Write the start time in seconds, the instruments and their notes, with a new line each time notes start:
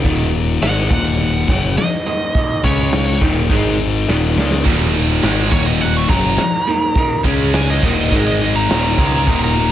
0.04 picked electric bass D#1, clean electric guitar D#2 A#2 D#3, kick, open hi-hat
0.33 clean electric guitar D#2 A#2
0.62 picked electric bass G#1, clean electric guitar D#2 A#2, distorted electric guitar G#2 D#3 G#3, lead electric guitar F#5, snare, open hi-hat
0.90 picked electric bass D#1, clean electric guitar D#2 A#2, distorted electric guitar D#3, lead electric guitar F#5, kick
1.19 clean electric guitar D#2 A#2, open hi-hat
1.48 picked electric bass F#1, clean electric guitar D#2 A#2, distorted electric guitar F#2 C#3 F#3, kick
1.77 clean electric guitar D#2 A#2, lead electric guitar D#5, snare, open hi-hat
2.06 clean electric guitar D#2 A#2 D#3
2.35 clean electric guitar D#2 A#2 D#3, kick, open hi-hat
2.64 picked electric bass C#2, clean electric guitar C#3 G#3 C#4, lead electric guitar C#5, kick
2.92 clean electric guitar C#3 G#3, snare, open hi-hat
3.21 picked electric bass D#1, clean electric guitar D#2 A#2 D#3, kick
3.49 picked electric bass G#1, clean electric guitar G#2 D#3 G#3, kick, open hi-hat
4.08 picked electric bass D#1, clean electric guitar D#2 A#2 D#3, snare
4.36 picked electric bass C#2, clean electric guitar D#2 A#2 D#3, distorted electric guitar C#3 G#3 C#4, snare
4.53 snare
4.66 picked electric bass D#1, clean electric guitar D#2 A#2 D#3, kick, open hi-hat
4.95 clean electric guitar D#2 A#2
5.23 picked electric bass G#1, clean electric guitar D#2 A#2, distorted electric guitar G#2 D#3 G#3, snare, open hi-hat
5.52 picked electric bass D#1, clean electric guitar D#2 A#2, distorted electric guitar D#3, lead electric guitar C#5, kick
5.66 lead electric guitar D#5
5.80 clean electric guitar D#2 A#2, lead electric guitar F#5, open hi-hat
5.97 lead electric guitar C#6
6.09 picked electric bass F#1, clean electric guitar D#2 A#2, distorted electric guitar F#2 C#3 F#3, lead electric guitar A#5, kick
6.37 clean electric guitar D#2 A#2, snare, open hi-hat
6.67 clean electric guitar D#2 A#2 D#3
6.95 clean electric guitar D#2 A#2 D#3, kick, open hi-hat
7.24 picked electric bass C#2, clean electric guitar C#3 G#3 C#4, kick
7.53 clean electric guitar G#3, lead electric guitar G#5, snare, open hi-hat
7.70 lead electric guitar D#5
7.83 picked electric bass D#1, clean electric guitar D#2 A#2 D#3, kick
8.12 picked electric bass G#1, clean electric guitar G#2 D#3 G#3, kick, open hi-hat
8.28 lead electric guitar D#5
8.41 clean electric guitar G#2 D#3
8.56 lead electric guitar A#5
8.69 picked electric bass D#1, clean electric guitar D#2 A#2 D#3, snare, open hi-hat
8.97 picked electric bass C#2, clean electric guitar D#2 A#2 D#3, distorted electric guitar C#3 G#3 C#4, kick
9.26 picked electric bass D#1, clean electric guitar D#2 A#2 D#3, kick, open hi-hat
9.44 lead electric guitar A#5
9.56 clean electric guitar D#2 A#2